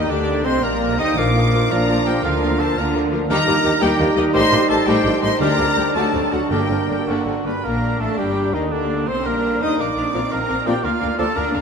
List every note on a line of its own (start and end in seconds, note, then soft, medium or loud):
0.00 0.10 D#2 medium
0.00 0.10 D#3 medium
0.00 0.11 D#3 medium
0.00 0.12 D#4 medium
0.09 0.44 D2 medium
0.09 0.45 D2 medium
0.09 0.44 D3 medium
0.09 0.45 D3 medium
0.09 0.47 D4 medium
0.09 0.45 D4 medium
0.09 0.47 G4 medium
0.09 0.45 D5 medium
0.44 0.63 C2 medium
0.44 0.63 C3 medium
0.44 0.62 C4 medium
0.44 0.63 C4 medium
0.44 0.65 C4 medium
0.44 0.63 C5 medium
0.44 0.64 C5 medium
0.44 0.63 C5 medium
0.44 0.65 D#5 medium
0.44 0.62 C6 medium
0.63 0.99 A#1 medium
0.63 0.99 A#2 medium
0.63 0.99 A#3 medium
0.63 1.01 A#4 medium
0.63 0.99 A#4 medium
0.63 0.99 D5 medium
0.63 0.99 A#5 medium
0.99 1.17 D#2 medium
0.99 1.18 D#3 medium
0.99 1.17 D#4 medium
0.99 1.17 D#5 medium
0.99 1.19 D#5 medium
0.99 1.17 D#5 medium
0.99 1.19 G5 medium
0.99 1.18 D#6 medium
1.17 1.65 A#1 medium
1.17 1.65 A#2 medium
1.17 1.24 F3 medium
1.17 3.26 F3 medium
1.17 1.67 A#3 medium
1.17 1.25 A#3 medium
1.17 1.67 D4 medium
1.17 1.25 F4 medium
1.17 1.25 A#4 medium
1.17 3.27 A#4 medium
1.17 1.73 D5 medium
1.17 1.73 F5 medium
1.17 1.71 D6 medium
1.35 1.42 F3 medium
1.35 1.42 A#3 medium
1.35 1.42 F4 medium
1.35 1.43 A#4 medium
1.53 1.60 F3 soft
1.53 1.60 A#3 medium
1.53 1.60 F4 medium
1.53 1.61 A#4 medium
1.70 2.18 A#1 medium
1.70 2.18 A#2 medium
1.70 1.78 F3 medium
1.70 1.78 A#3 medium
1.70 2.23 A#3 medium
1.70 2.23 D4 medium
1.70 1.78 F4 medium
1.70 1.78 A#4 medium
1.70 2.06 A#4 medium
1.70 2.07 D5 medium
1.70 2.07 A#5 medium
1.89 1.96 F3 medium
1.89 1.96 A#3 medium
1.89 1.96 F4 medium
1.89 1.96 A#4 medium
2.06 2.14 F3 medium
2.06 2.14 A#3 medium
2.06 2.13 F4 soft
2.06 2.24 G4 medium
2.06 2.13 A#4 medium
2.06 2.24 A#4 medium
2.06 2.25 G5 medium
2.23 2.72 D2 medium
2.23 2.72 D3 medium
2.23 2.31 F3 medium
2.23 2.32 A#3 medium
2.23 2.77 A#3 medium
2.23 2.77 D4 medium
2.23 2.31 F4 medium
2.23 2.61 F4 medium
2.23 2.31 A#4 medium
2.23 2.62 A#4 medium
2.23 2.60 F5 medium
2.42 2.50 F3 medium
2.42 2.50 A#3 medium
2.42 2.49 F4 medium
2.42 2.49 A#4 medium
2.59 2.67 F3 medium
2.59 2.67 A#3 medium
2.59 2.67 F4 medium
2.59 2.79 A4 medium
2.59 2.67 A#4 medium
2.59 2.80 C5 medium
2.59 2.78 A5 medium
2.77 3.24 D2 medium
2.77 3.24 D3 medium
2.77 2.85 F3 medium
2.77 2.85 A#3 medium
2.77 3.30 A#3 medium
2.77 3.29 D4 medium
2.77 2.85 F4 medium
2.77 2.85 A#4 medium
2.77 2.95 A#4 medium
2.77 2.96 D5 medium
2.77 2.96 A#5 medium
2.94 3.02 F3 medium
2.94 3.02 A#3 medium
2.94 3.02 F4 medium
2.94 3.02 A#4 medium
3.12 3.19 F3 medium
3.12 3.19 A#3 medium
3.12 3.20 F4 medium
3.12 3.20 A#4 medium
3.29 3.37 D#2 medium
3.29 3.37 D#3 medium
3.29 3.38 D#3 medium
3.29 3.45 G3 medium
3.29 5.36 G3 medium
3.29 3.45 A#3 medium
3.29 5.36 D#4 medium
3.29 3.46 D#4 medium
3.29 3.46 G4 medium
3.29 3.38 G4 medium
3.29 3.84 A#4 loud
3.29 3.79 D#5 medium
3.29 3.79 A#5 loud
3.46 3.54 D#2 medium
3.46 3.55 D#3 medium
3.46 3.54 G3 medium
3.46 3.54 A#3 medium
3.46 3.54 D4 medium
3.46 3.54 F4 soft
3.46 3.55 G4 medium
3.64 3.72 D#2 medium
3.64 3.72 D#3 medium
3.64 3.71 G3 medium
3.64 3.71 A#3 medium
3.64 3.72 D#4 medium
3.64 3.73 G4 medium
3.64 3.72 G4 medium
3.81 3.89 D#2 medium
3.81 3.90 D#3 medium
3.81 3.89 D#3 medium
3.81 3.97 G3 medium
3.81 3.97 A#3 medium
3.81 3.98 D#4 medium
3.81 3.98 G4 medium
3.81 4.17 G4 medium
3.81 3.90 G4 medium
3.81 4.19 A#4 medium
3.81 4.17 G5 loud
3.98 4.07 D#2 medium
3.98 4.06 D#3 medium
3.98 4.08 D#3 medium
3.98 4.06 G3 medium
3.98 4.06 A#3 medium
3.98 4.06 D4 medium
3.98 4.06 F4 medium
3.98 4.07 G4 medium
4.16 4.24 D#2 medium
4.16 4.24 D#3 medium
4.16 4.25 D#3 medium
4.16 4.23 G3 medium
4.16 4.23 A#3 medium
4.16 4.33 D#4 medium
4.16 4.24 D#4 medium
4.16 4.24 G4 medium
4.16 4.34 G4 medium
4.16 4.24 D#5 medium
4.34 4.41 A1 medium
4.34 4.41 A2 medium
4.34 4.42 D#3 medium
4.34 4.50 G3 medium
4.34 4.50 A3 medium
4.34 4.50 D#4 medium
4.34 4.42 G4 medium
4.34 4.51 G4 medium
4.34 4.69 C5 loud
4.34 4.69 D#5 loud
4.34 4.69 C6 loud
4.51 4.58 A1 medium
4.51 4.59 A2 medium
4.51 4.60 D#3 medium
4.51 4.59 G3 medium
4.51 4.59 A3 medium
4.51 4.59 D4 medium
4.51 4.59 F4 medium
4.51 4.60 G4 medium
4.69 4.76 A1 medium
4.69 4.76 A2 medium
4.69 4.78 D#3 medium
4.69 4.76 G3 medium
4.69 4.76 A3 medium
4.69 4.76 D#4 medium
4.69 4.77 G4 medium
4.69 4.76 G4 medium
4.69 4.88 A4 medium
4.69 4.87 C5 medium
4.69 4.87 A5 medium
4.86 4.94 A1 medium
4.86 4.94 A2 medium
4.86 4.96 D#3 medium
4.86 5.03 G3 medium
4.86 5.03 A3 medium
4.86 5.03 D#4 medium
4.86 4.94 G4 medium
4.86 5.03 G4 medium
4.86 5.24 G4 medium
4.86 5.22 C5 medium
4.86 5.23 G5 loud
5.04 5.12 A1 medium
5.04 5.12 A2 medium
5.04 5.13 D#3 medium
5.04 5.12 G3 medium
5.04 5.12 A3 medium
5.04 5.12 D4 medium
5.04 5.12 F4 medium
5.04 5.13 G4 medium
5.22 5.30 A1 medium
5.22 5.29 A2 medium
5.22 5.31 D#3 medium
5.22 5.29 G3 medium
5.22 5.29 A3 medium
5.22 5.30 D#4 medium
5.22 5.30 G4 medium
5.22 5.40 C5 medium
5.22 5.40 D#5 medium
5.22 5.40 C6 medium
5.40 5.47 D2 medium
5.40 5.48 D2 medium
5.40 5.91 D3 medium
5.40 5.49 D3 medium
5.40 5.57 G3 medium
5.40 5.94 G3 medium
5.40 7.41 D4 medium
5.40 5.57 D4 medium
5.40 5.57 G4 medium
5.40 5.48 G4 medium
5.40 5.94 A#4 medium
5.40 5.94 D5 medium
5.40 5.94 A#5 loud
5.58 5.65 D2 medium
5.58 5.66 D2 medium
5.58 5.67 D3 medium
5.58 5.66 G3 medium
5.58 5.66 C4 medium
5.58 5.66 F4 soft
5.58 5.66 G4 medium
5.76 5.84 D2 medium
5.76 5.85 D3 medium
5.76 5.84 G3 medium
5.76 5.85 D4 soft
5.76 5.85 G4 medium
5.95 6.02 D2 medium
5.95 6.12 D3 medium
5.95 6.04 D3 medium
5.95 6.50 F#3 medium
5.95 6.12 A3 medium
5.95 6.13 D4 medium
5.95 6.03 F#4 medium
5.95 6.13 F#4 medium
5.95 6.34 A4 medium
5.95 6.31 D5 medium
5.95 6.31 A5 medium
6.13 6.20 D2 soft
6.13 6.21 D2 soft
6.13 6.21 D3 soft
6.13 6.22 D3 soft
6.13 6.21 A3 medium
6.13 6.22 C4 medium
6.13 6.22 D#4 soft
6.13 6.21 F#4 soft
6.31 6.39 D2 soft
6.31 6.39 D2 medium
6.31 6.40 D3 soft
6.31 6.41 D3 soft
6.31 6.40 A3 medium
6.31 6.41 D4 soft
6.31 6.51 F#4 medium
6.31 6.41 F#4 medium
6.31 6.41 F#4 soft
6.31 6.53 A4 medium
6.31 6.51 F#5 medium
6.49 6.58 G1 medium
6.49 6.58 G2 medium
6.49 7.03 G2 medium
6.49 6.68 D3 medium
6.49 6.59 D3 medium
6.49 7.45 A#3 medium
6.49 6.68 A#3 medium
6.49 6.69 D4 medium
6.49 6.69 G4 medium
6.49 6.88 G4 medium
6.49 6.59 A#4 soft
6.49 7.08 A#4 medium
6.49 7.06 G5 medium
6.69 6.77 G1 soft
6.69 6.77 G2 soft
6.69 6.77 D3 soft
6.69 6.78 D3 soft
6.69 6.77 A#3 soft
6.69 6.78 C4 soft
6.69 6.78 F4 soft
6.69 6.78 A#4 soft
6.88 6.96 G1 soft
6.88 6.96 G2 soft
6.88 6.96 D3 soft
6.88 6.97 D3 soft
6.88 6.96 A#3 soft
6.88 6.98 D4 soft
6.88 7.09 G4 medium
6.88 6.98 G4 soft
6.88 6.97 A#4 soft
6.88 7.07 G5 medium
7.07 7.14 G1 medium
7.07 7.15 G2 medium
7.07 7.25 D3 soft
7.07 7.16 D3 soft
7.07 7.25 A#3 soft
7.07 7.26 D4 medium
7.07 7.47 F#4 medium
7.07 7.26 G4 medium
7.07 7.16 A#4 soft
7.07 7.47 F#5 medium
7.26 7.33 G1 soft
7.26 7.33 G2 soft
7.26 7.34 D3 soft
7.26 7.35 D3 soft
7.26 7.34 A#3 soft
7.26 7.36 C4 soft
7.26 7.35 F4 soft
7.26 7.35 A#4 soft
7.44 7.52 G1 soft
7.44 7.52 G2 soft
7.44 7.52 D3 soft
7.44 7.54 D3 soft
7.44 7.52 A#3 soft
7.44 7.54 D4 soft
7.44 7.54 G4 soft
7.44 7.54 A#4 soft
7.44 7.65 B4 medium
7.44 7.64 B5 soft
7.63 7.97 A#1 medium
7.63 7.97 A#3 medium
7.63 8.02 A#3 medium
7.63 8.68 D4 medium
7.63 7.97 A#4 medium
7.63 8.02 A#4 medium
7.63 8.01 A#5 medium
7.99 8.07 A1 medium
7.99 8.17 A3 soft
7.99 8.18 A3 soft
7.99 8.20 A3 medium
7.99 8.18 A4 medium
7.99 8.19 A4 medium
7.99 8.18 A5 medium
8.18 8.53 G1 medium
8.18 8.53 G3 medium
8.18 8.55 G3 medium
8.18 8.56 G3 medium
8.18 8.55 G4 medium
8.18 8.53 G4 medium
8.18 8.56 G4 medium
8.18 8.54 G5 medium
8.53 8.72 D#2 medium
8.53 8.71 D#3 medium
8.53 8.73 D#3 medium
8.53 8.72 D#3 medium
8.53 8.74 D#3 medium
8.53 8.71 D#4 medium
8.53 8.61 D#4 soft
8.53 8.73 D#4 medium
8.53 8.61 D#5 soft
8.71 9.08 D2 medium
8.71 9.09 D3 medium
8.71 9.07 D3 medium
8.71 9.07 D3 soft
8.71 9.10 D3 medium
8.71 9.26 A#3 medium
8.71 9.07 D4 medium
8.71 9.09 D4 medium
8.71 9.07 D5 medium
9.07 9.26 C2 medium
9.07 9.26 C4 medium
9.07 9.25 C4 medium
9.07 9.26 C4 medium
9.07 9.26 C5 medium
9.07 9.28 C5 medium
9.07 9.25 C6 medium
9.26 9.62 A#1 medium
9.26 9.62 A#3 medium
9.26 9.64 A#3 medium
9.26 9.62 A#3 medium
9.26 9.61 A#3 medium
9.26 9.79 D4 medium
9.26 9.61 A#4 medium
9.26 9.64 A#4 medium
9.26 9.61 A#4 medium
9.26 9.62 A#5 medium
9.61 9.79 D#2 medium
9.61 9.68 D#4 medium
9.61 9.80 D#4 medium
9.61 9.79 D#4 medium
9.61 9.80 D#4 medium
9.61 9.79 D#5 medium
9.61 9.68 D#5 medium
9.61 9.82 D#5 medium
9.61 9.79 D#6 medium
9.79 9.86 A#1 medium
9.79 9.86 A#3 medium
9.79 9.86 D4 medium
9.79 9.86 A#4 soft
9.79 10.33 D5 medium
9.79 9.87 F5 medium
9.79 10.31 D6 medium
9.97 10.04 A#1 medium
9.97 10.14 D4 medium
9.97 10.04 D4 soft
9.97 10.04 A#4 soft
9.97 10.04 F5 medium
10.14 10.21 A#1 medium
10.14 10.20 F3 medium
10.14 10.21 A#3 medium
10.14 10.83 C4 medium
10.14 10.21 D4 soft
10.14 10.22 F4 soft
10.14 10.21 A#4 soft
10.14 10.23 D5 medium
10.14 10.22 F5 soft
10.32 10.39 A#1 medium
10.32 10.39 D4 medium
10.32 10.39 A#4 medium
10.32 10.68 A#4 medium
10.32 10.39 F5 medium
10.32 10.67 A#5 medium
10.48 10.56 A#1 medium
10.48 10.56 D4 medium
10.48 10.56 A#4 medium
10.48 10.56 F5 medium
10.66 10.74 A#1 medium
10.66 10.73 F3 medium
10.66 10.73 A#3 medium
10.66 10.73 D4 medium
10.66 10.74 F4 medium
10.66 10.86 G4 medium
10.66 10.73 A#4 medium
10.66 10.75 D5 medium
10.66 10.74 F5 soft
10.66 10.84 G5 medium
10.84 10.91 D2 medium
10.84 11.36 A#3 medium
10.84 10.91 D4 medium
10.84 11.18 F4 medium
10.84 10.91 A#4 medium
10.84 11.18 F5 medium
10.84 10.91 F5 medium
11.01 11.09 D2 medium
11.01 11.08 D4 medium
11.01 11.08 A#4 medium
11.01 11.08 F5 medium
11.18 11.26 D2 medium
11.18 11.25 F3 medium
11.18 11.25 A#3 medium
11.18 11.26 A#3 medium
11.18 11.25 D4 medium
11.18 11.26 F4 medium
11.18 11.38 A4 medium
11.18 11.26 A#4 medium
11.18 11.27 D5 medium
11.18 11.25 F5 medium
11.18 11.36 A5 medium
11.35 11.44 D2 medium
11.35 11.43 D4 medium
11.35 11.54 D4 medium
11.35 11.43 A#4 medium
11.35 11.54 A#4 medium
11.35 11.43 F5 medium
11.35 11.54 A#5 medium
11.53 11.61 D2 medium
11.53 11.61 A#3 medium
11.53 11.61 D4 medium
11.53 11.61 A#4 medium
11.53 11.60 F5 medium